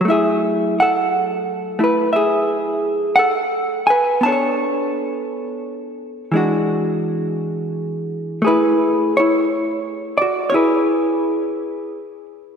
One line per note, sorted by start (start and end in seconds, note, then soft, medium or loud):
0.01 4.22 F#3 soft
0.05 1.78 A3 soft
0.05 1.79 E4 soft
0.10 0.75 G#4 soft
0.10 0.74 E5 medium
0.80 1.80 A4 medium
0.80 1.83 F#5 medium
1.79 4.21 A3 soft
1.79 4.24 E4 soft
1.84 2.12 B4 medium
2.13 3.16 G#4 medium
2.13 3.15 E5 medium
3.16 3.86 A4 medium
3.16 3.85 F#5 medium
3.87 4.21 B4 medium
3.87 4.23 G#5 medium
4.21 6.32 B3 soft
4.21 5.24 A5 medium
4.25 6.34 D4 soft
4.25 6.36 A4 soft
4.25 4.31 C#5 medium
4.32 6.38 C#5 medium
6.32 8.42 E3 soft
6.32 8.41 G#3 soft
6.32 8.44 D4 soft
6.37 8.44 F#4 medium
8.42 12.57 A3 soft
8.42 10.53 G#4 medium
8.47 9.13 E4 medium
8.47 10.49 B4 medium
9.17 10.18 E4 medium
9.17 10.17 C#5 medium
10.18 10.49 D5 medium
10.22 10.51 F#4 medium
10.50 10.54 C#4 soft
10.50 10.55 C#5 medium
10.54 12.26 E4 medium
10.54 12.57 G#4 soft
10.54 12.57 B4 soft